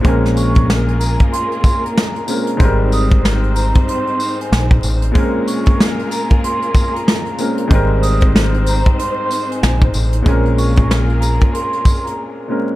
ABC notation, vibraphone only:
X:1
M:4/4
L:1/16
Q:"Swing 16ths" 1/4=94
K:Bbdor
V:1 name="Vibraphone"
z2 d'2 z2 b z c'3 b4- b | z2 e'2 z2 b z c'3 a2 z3 | z2 d'2 z2 b z c'3 b4- b | z2 e'2 z2 b z c'3 a2 z3 |
z2 d'2 z2 b z c'3 b z4 |]